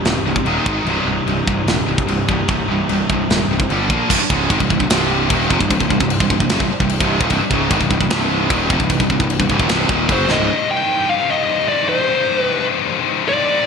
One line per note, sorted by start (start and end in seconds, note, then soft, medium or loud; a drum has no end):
0.00 0.44 C2 medium
0.00 0.44 G2 medium
0.00 0.45 C3 medium
0.00 0.45 G3 medium
0.00 0.89 D#4 loud
0.04 0.17 D#1 medium
0.04 0.24 C2 medium
0.04 0.25 G2 medium
0.04 snare medium
0.04 china soft
0.24 0.37 C1 medium
0.24 0.44 C2 medium
0.24 0.45 G2 medium
0.36 kick medium
0.45 0.58 D#1 medium
0.45 0.65 D#2 medium
0.45 0.65 A#2 medium
0.45 0.65 D#3 medium
0.45 china soft
0.66 0.79 G#1 medium
0.66 0.86 G#2 medium
0.66 0.86 D#3 medium
0.66 0.86 G#3 medium
0.66 kick medium
0.85 0.98 C1 medium
0.85 1.06 C2 medium
0.85 1.06 G2 medium
0.85 1.06 C3 medium
0.85 2.27 G3 medium
0.85 china soft
0.90 2.26 D#4 medium
1.05 1.18 C1 medium
1.05 1.26 C2 medium
1.05 1.26 G2 medium
1.26 1.39 C1 medium
1.26 1.45 C2 medium
1.26 1.46 G2 medium
1.26 china soft
1.47 1.60 C1 medium
1.47 1.66 C2 medium
1.47 1.66 G2 medium
1.47 kick medium
1.67 1.80 D#1 medium
1.67 1.85 C2 medium
1.67 1.86 G2 medium
1.67 snare loud
1.67 china soft
1.86 2.01 C1 medium
1.86 2.05 C2 medium
1.86 2.06 G2 medium
1.98 kick medium
2.07 2.20 C1 medium
2.07 2.26 C2 medium
2.07 2.26 G2 medium
2.07 china soft
2.27 2.41 C1 medium
2.27 2.47 C2 medium
2.27 2.47 G2 medium
2.27 2.48 C3 medium
2.27 2.47 G3 medium
2.27 2.47 D#4 medium
2.27 kick medium
2.48 2.61 C1 medium
2.48 2.67 C2 medium
2.48 2.67 G2 medium
2.48 3.69 C3 loud
2.48 3.69 G3 medium
2.48 3.70 D#4 loud
2.48 kick loud
2.48 china soft
2.68 2.81 C1 medium
2.68 2.87 C2 medium
2.68 2.87 G2 medium
2.89 3.02 C1 medium
2.89 3.07 C2 medium
2.89 3.08 G2 medium
2.89 china medium
3.10 3.22 C1 medium
3.10 3.28 C2 medium
3.10 3.28 G2 medium
3.10 kick medium
3.29 3.42 D#1 medium
3.29 3.48 C2 medium
3.29 3.48 G2 medium
3.29 snare loud
3.29 china soft
3.49 3.61 C1 medium
3.49 3.68 C2 medium
3.49 3.68 G2 medium
3.60 kick medium
3.69 3.91 G1 medium
3.69 3.89 G2 medium
3.69 3.89 D3 medium
3.69 3.90 G3 medium
3.69 china soft
3.89 4.02 A#1 medium
3.89 4.09 A#2 medium
3.89 4.09 F3 medium
3.89 4.09 A#3 medium
3.89 kick medium
4.10 4.18 C1 medium
4.10 4.19 C2 loud
4.10 4.20 G2 loud
4.10 10.45 G3 medium
4.10 10.45 D#4 medium
4.10 7.27 C5 medium
4.10 kick loud
4.10 crash loud
4.10 crash medium
4.18 muted picked electric bass stroke soft
4.18 muted distorted electric guitar stroke medium
4.30 4.49 C#1 loud
4.30 4.49 C#2 medium
4.30 4.49 G#2 loud
4.30 4.50 C#3 loud
4.30 kick loud
4.50 4.59 G#1 loud
4.50 4.60 G#2 medium
4.50 4.60 D#3 loud
4.50 kick loud
4.50 crash medium
4.60 4.70 C1 medium
4.60 4.70 C2 medium
4.60 4.70 G2 medium
4.60 kick medium
4.70 4.79 C1 medium
4.70 4.79 C2 medium
4.70 4.80 G2 medium
4.70 kick medium
4.79 4.88 C1 medium
4.79 4.90 C2 medium
4.79 4.89 G2 medium
4.79 kick medium
4.89 5.27 C1 medium
4.89 5.30 C2 medium
4.89 5.30 G2 loud
4.89 5.30 C3 medium
4.89 snare loud
4.89 crash medium
5.30 5.49 D#1 medium
5.30 5.49 D#2 loud
5.30 5.50 A#2 medium
5.30 5.51 D#3 loud
5.30 kick loud
5.30 crash medium
5.49 5.60 F1 medium
5.49 5.59 F2 medium
5.49 5.60 C3 medium
5.49 kick loud
5.60 5.69 C1 medium
5.60 5.69 C2 medium
5.60 5.69 G2 medium
5.60 kick medium
5.70 5.80 C1 medium
5.70 5.78 C2 medium
5.70 5.79 G2 medium
5.70 kick medium
5.70 crash medium
5.79 5.90 C1 medium
5.79 5.88 C2 medium
5.79 5.89 G2 medium
5.79 kick medium
5.89 6.00 C1 medium
5.89 5.99 C2 medium
5.89 5.99 G2 medium
5.89 kick medium
6.00 6.19 C1 medium
6.00 6.16 C2 medium
6.00 6.16 G2 medium
6.00 kick medium
6.10 crash medium
6.20 6.29 C1 medium
6.20 6.31 C2 medium
6.20 6.31 G2 medium
6.20 kick medium
6.30 6.40 C1 medium
6.30 6.39 C2 medium
6.30 6.40 G2 medium
6.30 kick medium
6.40 6.50 C1 medium
6.40 6.50 C2 medium
6.40 6.51 G2 medium
6.40 kick medium
6.49 6.59 F#1 medium
6.49 6.60 F#2 loud
6.49 6.60 C#3 medium
6.49 snare loud
6.49 crash medium
6.59 6.69 C1 medium
6.59 6.69 C2 medium
6.59 6.71 G2 medium
6.59 kick loud
6.70 muted distorted electric guitar stroke medium
6.70 muted picked electric bass stroke soft
6.80 6.99 C1 medium
6.80 6.97 C2 medium
6.80 6.98 G2 medium
6.80 kick medium
6.89 crash medium
7.00 7.19 C1 loud
7.00 7.20 C2 medium
7.00 7.21 G2 medium
7.00 7.21 C3 loud
7.00 kick loud
7.20 7.30 D#1 loud
7.20 7.31 D#2 loud
7.20 7.31 A#2 loud
7.20 kick loud
7.30 7.40 C1 loud
7.30 7.40 C2 loud
7.30 7.41 G2 loud
7.30 10.47 B4 loud
7.30 kick medium
7.30 crash medium
7.42 muted picked electric bass stroke soft
7.42 muted distorted electric guitar stroke medium
7.51 7.69 C#1 medium
7.51 7.70 C#2 medium
7.51 7.69 G#2 loud
7.51 7.71 C#3 loud
7.51 kick loud
7.71 7.80 G#1 loud
7.71 7.80 G#2 medium
7.71 7.80 D#3 loud
7.71 kick loud
7.71 crash medium
7.81 7.89 C1 medium
7.81 7.91 C2 medium
7.81 7.91 G2 medium
7.81 kick medium
7.90 8.00 C1 medium
7.90 7.99 C2 medium
7.90 8.00 G2 medium
7.90 kick medium
8.01 8.10 C1 medium
8.01 8.09 C2 medium
8.01 8.09 G2 medium
8.01 kick medium
8.10 8.48 C1 loud
8.10 8.50 C2 medium
8.10 8.50 G2 loud
8.10 8.50 C3 loud
8.10 snare loud
8.10 crash medium
8.50 8.69 D#1 loud
8.50 8.69 D#2 medium
8.50 8.70 A#2 medium
8.50 8.70 D#3 loud
8.50 kick loud
8.50 crash medium
8.69 8.79 F1 loud
8.69 8.79 F2 medium
8.69 8.80 C3 medium
8.69 kick loud
8.79 8.89 C1 medium
8.79 8.88 C2 medium
8.79 8.88 G2 medium
8.79 kick medium
8.89 8.99 C1 medium
8.89 9.00 C2 medium
8.89 8.99 G2 medium
8.89 kick loud
8.89 crash medium
9.00 9.09 C1 medium
9.00 9.09 C2 medium
9.00 9.09 G2 medium
9.00 kick medium
9.10 9.19 C1 medium
9.10 9.19 C2 medium
9.10 9.19 G2 medium
9.10 kick medium
9.20 9.38 C1 medium
9.20 9.36 C2 medium
9.20 9.36 G2 medium
9.20 kick medium
9.30 crash medium
9.40 9.49 C1 medium
9.40 9.50 C2 medium
9.40 9.50 G2 medium
9.40 kick medium
9.50 9.59 C#1 medium
9.50 9.60 C#2 medium
9.50 9.60 G#2 loud
9.50 kick medium
9.59 9.69 D#1 medium
9.59 9.69 D#2 medium
9.59 9.70 A#2 loud
9.59 kick medium
9.69 9.88 C1 loud
9.69 9.89 C2 medium
9.69 9.90 G2 medium
9.69 9.90 C3 loud
9.69 snare loud
9.69 crash medium
9.89 10.08 D#1 medium
9.89 10.09 D#2 medium
9.89 10.09 A#2 loud
9.89 10.10 D#3 loud
9.89 kick medium
10.09 10.28 F#1 loud
10.09 10.29 F#2 medium
10.09 10.29 C#3 loud
10.09 10.29 F#3 loud
10.09 10.31 C5 medium
10.09 kick loud
10.09 crash medium
10.28 10.37 C1 loud
10.28 10.39 C2 medium
10.28 10.39 G2 medium
10.28 10.68 D#5 loud
10.28 snare medium
10.38 10.48 C#1 loud
10.38 10.49 C#2 medium
10.38 10.49 G#2 loud
10.46 13.63 G3 medium
10.46 13.66 D#4 medium
10.46 13.66 C5 medium
10.51 10.59 C2 medium
10.51 10.58 G2 loud
10.59 10.66 C2 medium
10.59 10.67 G2 medium
10.67 10.73 C2 medium
10.67 10.75 G2 medium
10.71 10.81 C2 medium
10.71 11.10 G5 loud
10.75 10.83 G2 medium
10.83 10.89 C2 medium
10.83 10.90 G2 medium
10.89 10.97 C2 medium
10.89 10.98 G2 medium
10.97 11.05 C2 medium
10.97 11.06 G2 loud
11.06 11.13 C2 medium
11.06 11.14 G2 medium
11.10 11.21 C2 medium
11.10 11.22 G2 loud
11.10 11.30 F5 loud
11.21 11.29 C2 medium
11.21 11.29 G2 medium
11.30 11.36 C2 medium
11.30 11.37 G2 medium
11.30 11.68 D#5 medium
11.36 11.44 C2 medium
11.36 11.45 G2 medium
11.46 11.53 C2 medium
11.46 11.53 G2 loud
11.53 11.60 C2 medium
11.53 11.61 G2 medium
11.60 11.67 C2 medium
11.60 11.69 G2 medium
11.67 11.75 C2 medium
11.67 11.77 G2 medium
11.67 11.88 D5 medium
11.76 11.82 C2 medium
11.76 11.84 G2 medium
11.83 11.90 C2 medium
11.83 11.92 G2 medium
11.89 11.98 C2 medium
11.89 12.41 C5 medium
11.93 12.00 G2 medium
11.99 12.07 C2 medium
11.99 12.08 G2 medium
12.08 12.15 C2 medium
12.08 12.16 G2 medium
12.16 12.23 C2 medium
12.16 12.24 G2 medium
12.24 12.31 C2 medium
12.24 12.32 G2 medium
12.32 12.39 C2 medium
12.32 12.40 G2 medium
12.39 12.45 C2 medium
12.39 12.47 G2 medium
12.39 12.64 B4 medium
12.46 12.53 C2 medium
12.46 12.55 G2 medium
12.54 12.61 C2 medium
12.54 12.62 G2 medium
12.61 12.68 C2 medium
12.61 12.69 G2 medium
12.69 12.76 C2 medium
12.69 12.77 G2 medium
12.76 12.84 C2 medium
12.76 12.85 G2 medium
12.84 12.91 C2 medium
12.84 12.92 G2 medium
12.91 12.99 C2 medium
12.91 13.00 G2 medium
12.99 13.07 C2 medium
12.99 13.07 G2 medium
13.07 13.14 C2 medium
13.07 13.15 G2 medium
13.15 13.22 C2 medium
13.15 13.23 G2 medium
13.23 13.30 C2 medium
13.23 13.29 G2 medium
13.29 13.37 C2 medium
13.29 13.36 G2 medium
13.29 13.66 D5 loud
13.37 13.44 C2 medium
13.37 13.44 G2 medium
13.44 13.51 C2 medium
13.44 13.53 G2 medium
13.52 13.59 C2 medium
13.52 13.61 G2 medium
13.59 13.66 C2 medium
13.59 13.66 G2 medium